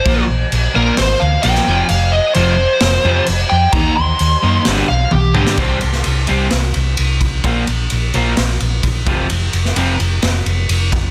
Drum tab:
CC |x---x---x---x---|x---x---x---x---|x---x---x-------|x---------------|
RD |----------------|----------------|----------------|--x-x-x-x-x-x-x-|
SD |--------o----o--|--------o-------|--------o------o|---o----o-------|
T1 |----------------|----------------|------------o---|----------------|
T2 |----------------|----------------|--------------o-|----------------|
BD |o---------------|----------------|o---------------|o-------------o-|

CC |----------------|----------------|
RD |x-x-x-x-x-x-x-x-|x-x-x-x-x-x-x-x-|
SD |--------o-------|---o----o-------|
T1 |----------------|----------------|
T2 |----------------|----------------|
BD |o-----------o-o-|--------------o-|